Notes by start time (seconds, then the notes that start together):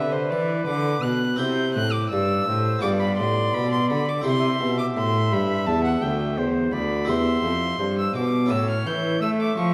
Already playing: D3 G4 B4 E5
0.12 C5
0.30 E3 D5
0.67 D3 D6
1.03 B2 F#6
1.36 C3 C4 E4 G4 G6
1.40 C3 C5
1.74 A2 F#6
1.92 D6
2.10 G2 D5 E6
2.48 A2 C5
2.79 B3 F4 G4 D6
2.83 G2 D5
3.01 B5
3.17 A2 C6
3.54 B2 B5
3.73 C6
3.90 D3 B5
4.09 D6
4.21 C4 E4 G4
4.26 C3 E5 C6
4.60 B2
4.79 D6
4.97 A2 C6
5.32 G2 B5
5.67 E2 A5
5.84 F#5
6.02 D2 G5
6.38 E2 C5
6.73 D2 D5 B5
7.05 E2 C4 E4 G4 E5
7.09 E2 C6
7.43 F2
7.79 G2 C5
7.99 E6
8.15 B2 D6
8.46 C#4 E4 A4 C#5
8.50 A2 E6
8.70 F6
8.87 E3 G6
9.20 A3 E5 E6
9.41 D6
9.57 F3 C#6